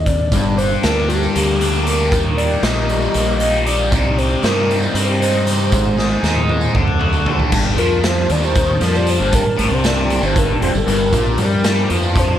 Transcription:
Already playing: D#2
0.06 D5, kick, closed hi-hat
0.32 G1 G2 G3 A#3 D4 A#4, kick, closed hi-hat, tambourine
0.58 G4 C5, closed hi-hat
0.71 tambourine
0.83 D2 D4 A#4, snare, closed hi-hat, tambourine
1.09 G3 G4, closed hi-hat
1.23 tambourine
1.35 D2 A#3, closed hi-hat
1.60 D4, closed hi-hat, tambourine
1.74 tambourine
1.85 G4 A#4, closed hi-hat, tambourine
2.10 D#2 D#3 D#4 A#4, kick, closed hi-hat, tambourine
2.37 G4 D5, closed hi-hat
2.52 tambourine
2.63 A#1 D#4 D#5, snare, closed hi-hat, tambourine
2.89 G3, closed hi-hat
3.02 tambourine
3.14 A#1 A#3, closed hi-hat
3.40 D#4, closed hi-hat, tambourine
3.54 tambourine
3.66 G4 D5, closed hi-hat, tambourine
3.91 C2 C3 C4 D#4 C5, kick, closed hi-hat, tambourine
4.16 G4 C5, closed hi-hat
4.31 tambourine
4.42 G2 D#4 A#4, snare, closed hi-hat, tambourine
4.68 G3, closed hi-hat
4.82 tambourine
4.94 G2 C4 C5, closed hi-hat
5.19 D#4, closed hi-hat, tambourine
5.33 tambourine
5.45 G4, closed hi-hat, tambourine
5.71 G#1 G#2 G#3, kick, closed hi-hat, tambourine
5.85 tambourine
5.97 G#4, snare
6.23 D#2 D#4, snare, tambourine
6.37 high tom, tambourine
6.48 G#3, high tom, tambourine
6.61 tambourine
6.73 D2 D3 F#3 D4 A4, kick, mid tom
6.88 mid tom
6.99 F#4, mid tom
7.13 tambourine
7.26 A4, floor tom
7.40 floor tom
7.51 G1 G2 G3 A#3 D4 A5, kick, crash, tambourine
7.76 F2 F3 A#4, closed hi-hat
8.04 C5, snare, closed hi-hat, tambourine
8.15 G3
8.29 D#2 D#3 D5, closed hi-hat
8.43 C5, tambourine
8.55 kick, closed hi-hat
8.79 F2 F3 G3 A#4, snare, closed hi-hat
8.95 D5, tambourine
9.07 C5, closed hi-hat
9.19 G1 G2, tambourine
9.33 A#4, kick, closed hi-hat, tambourine
9.40 G2
9.44 muted distorted electric guitar stroke, muted fingered electric bass stroke
9.57 A1 A2, closed hi-hat
9.69 C2 C3
9.74 C5
9.84 D5, snare, closed hi-hat, tambourine
10.01 D3
10.10 closed hi-hat
10.21 G1 G2 C5, tambourine
10.36 A#4, kick, closed hi-hat
10.59 F1 F2 G3, closed hi-hat
10.63 C5
10.74 G1 G2 A#4, tambourine
10.86 G1 G2, closed hi-hat
11.00 tambourine
11.12 A#1 A#2 F3 C4 D4 A#4, kick, closed hi-hat, tambourine
11.25 G3
11.38 G2 G3, closed hi-hat
11.64 snare, closed hi-hat, tambourine
11.77 tambourine
11.85 G2 F3
11.90 F2, closed hi-hat
12.03 tambourine
12.16 C5, kick, closed hi-hat

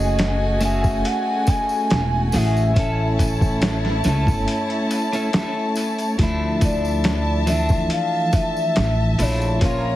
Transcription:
Already playing: F#1 A3 C#4 F#4 G#4 D#5 G#5
0.18 snare, open hi-hat, tambourine
0.60 A3 C#4 F#4 E5, open hi-hat, tambourine
0.65 G#4
0.84 kick, tambourine
1.05 F#5, open hi-hat, tambourine
1.47 G#5, kick, open hi-hat, tambourine
1.69 tambourine
1.90 E1, snare, open hi-hat, tambourine
2.32 A1 A3 C#4 F#4 G#4 E5, open hi-hat, tambourine
2.57 tambourine
2.74 A3 C#4 E4 C#5 A5, kick, open hi-hat, tambourine
2.79 A4
3.19 kick, open hi-hat, tambourine
3.41 kick, tambourine
3.61 snare, open hi-hat, tambourine
3.85 snare
4.04 C#2 A3 C#4 E4, snare, open hi-hat, tambourine
4.09 A4
4.27 G1, kick, tambourine
4.48 open hi-hat, tambourine
4.70 closed hi-hat
4.91 open hi-hat, tambourine
5.13 A3 C#4 E4 A4, closed hi-hat, tambourine
5.33 A3 C#4 E4 A4, snare, open hi-hat, tambourine
5.76 open hi-hat, tambourine
5.98 closed hi-hat, tambourine
6.18 D2 F3 A3 D4 E5 A5, kick, open hi-hat, tambourine
6.23 E4
6.61 D5, kick, open hi-hat, tambourine
6.85 tambourine
7.04 snare, open hi-hat, tambourine
7.46 F3 A3 D4 E5, open hi-hat, tambourine
7.52 E3
7.69 kick, tambourine
7.90 F5, open hi-hat, tambourine
8.33 E5, kick, open hi-hat, tambourine
8.56 tambourine
8.76 A1, snare, open hi-hat, tambourine
9.18 A#1 F3 A3 D4 E4 C#5, open hi-hat, tambourine
9.42 tambourine
9.59 F3 A#3 C#4 C#5 A#5, kick, open hi-hat, tambourine
9.65 F4

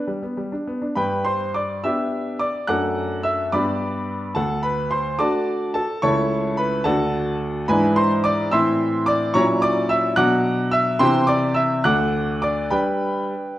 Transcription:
0.07 G3
0.23 B3
0.37 G3
0.52 D4
0.67 B3
0.82 D4
0.95 G2 B4 G5 B5
1.25 C5 C6
1.54 D5 D6
1.84 B3 D4 G4 E5 E6
2.39 D5 D6
2.68 F#2 A3 D4 A4 F#5 D6 F#6
3.23 E5 E6
3.52 G2 B3 D4 G4 D5 B5 D6
4.35 D2 A4 F#5 A5
4.63 B4 B5
4.91 C5 C6
5.19 A3 D4 F#4 D5 A5 D6
5.74 A4 A5
6.02 C#2 A3 E4 A4 C#5 A5 C#6
6.57 B4 B5
6.84 D2 A3 D4 F#4 A4 F#5 A5
7.68 G#2 E3 D4 E4 B4 G#5 B5
7.96 C5 C6
8.24 D5 D6
8.51 A2 E3 C4 E4 E5 C6 E6
9.06 D5 D6
9.34 A#2 F#3 C#4 E4 C#5 A#5 C#6
9.62 D5 D6
9.89 E5 E6
10.16 B2 F#3 D4 F#5 D6 F#6
10.71 E5 E6
10.99 C3 E3 C4 G4 C5 G5 C6
11.27 D5 D6
11.55 E5 E6
11.84 D2 D3 A3 D4 F#5 D6 F#6
12.42 D5 D6
12.70 G3 D4 B4 G5 B5

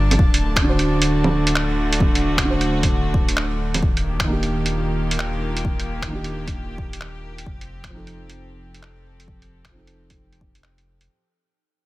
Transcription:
Already playing: G1 G3 D4 F4 A#4 A5
0.11 closed hi-hat, low bongo
0.19 D1 D3, kick
0.34 A3, closed hi-hat
0.56 finger snap, kick, closed hi-hat
0.62 D3 D4
0.67 F#4 C5
0.79 F#4, closed hi-hat
1.02 closed hi-hat
1.24 low bongo
1.47 closed hi-hat
1.55 finger snap
1.93 closed hi-hat
2.00 kick, low bongo
2.15 closed hi-hat
2.38 finger snap, kick, closed hi-hat
2.42 D3 D4
2.47 F#4 C5
2.61 closed hi-hat
2.83 kick, closed hi-hat
3.14 kick
3.29 closed hi-hat
3.37 finger snap
3.74 closed hi-hat, low bongo
3.82 D#1 D#3, kick
3.92 A#3
3.97 closed hi-hat
4.06 G4
4.20 finger snap, kick, closed hi-hat
4.24 D#3 A#3
4.30 D4 G4
4.37 F4
4.43 closed hi-hat
4.66 closed hi-hat
5.11 closed hi-hat
5.19 finger snap
5.57 closed hi-hat
5.65 kick
5.80 closed hi-hat
6.02 finger snap, kick, closed hi-hat
6.07 D#3 A#3
6.12 D4 G4
6.24 closed hi-hat
6.47 kick, closed hi-hat
6.78 kick
6.93 closed hi-hat
7.01 finger snap
7.38 closed hi-hat
7.46 F1 F3, kick
7.56 C4
7.61 closed hi-hat
7.84 finger snap, kick, closed hi-hat
7.89 F3 C4
7.95 D#4 A4
8.00 A4
8.07 closed hi-hat
8.30 closed hi-hat
8.74 closed hi-hat
8.83 finger snap
9.20 closed hi-hat
9.28 kick
9.42 closed hi-hat
9.65 finger snap, kick, closed hi-hat
9.70 F3 C4
9.75 D#4 A4
9.87 closed hi-hat
10.10 kick, closed hi-hat
10.33 closed hi-hat
10.41 kick
10.55 closed hi-hat
10.63 finger snap
10.78 closed hi-hat
11.01 closed hi-hat

